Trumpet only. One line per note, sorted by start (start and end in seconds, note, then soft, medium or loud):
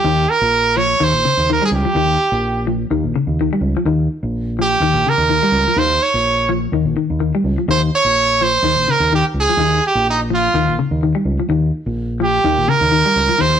0.00 0.32 G4 medium
0.31 0.79 A#4 loud
0.77 1.05 C#5 loud
1.04 1.50 C5 loud
1.53 1.63 A#4 medium
1.65 1.69 G#4 medium
1.76 2.65 G4 medium
4.62 5.11 G4 medium
5.09 5.80 A#4 loud
5.79 6.04 C5 loud
6.03 6.50 C#5 loud
7.71 7.81 C5 loud
7.95 8.44 C#5 loud
8.43 8.92 C5 loud
8.91 9.13 A#4 medium
9.15 9.25 G4 medium
9.40 9.82 G#4 loud
9.87 10.07 G4 medium
10.10 10.20 D#4 medium
10.35 10.77 F4 medium
12.24 12.70 G4 medium
12.69 13.43 A#4 loud
13.41 13.60 C5 loud